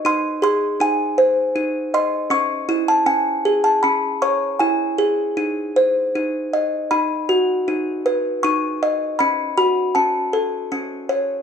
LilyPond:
\new Staff \with { instrumentName = "Music box" } { \time 3/4 \key gis \phrygian \tempo 4 = 79 << { bis''8 bis''8 gis''4. bis''8 | cis'''8. a''16 gis''8. a''16 b''8 cis'''8 | gis''2 r4 | b''2 cis'''4 |
b''8 b''8 a''4. r8 | } \\ { dis'8 gis'8 dis'8 bis'8 dis'8 dis''8 | cis'8 e'8 cis'8 gis'8 cis'8 cis''8 | e'8 gis'8 dis'8 bis'8 dis'8 dis''8 | dis'8 fis'8 dis'8 b'8 dis'8 dis''8 |
cis'8 fis'8 cis'8 a'8 cis'8 cis''8 | } >> }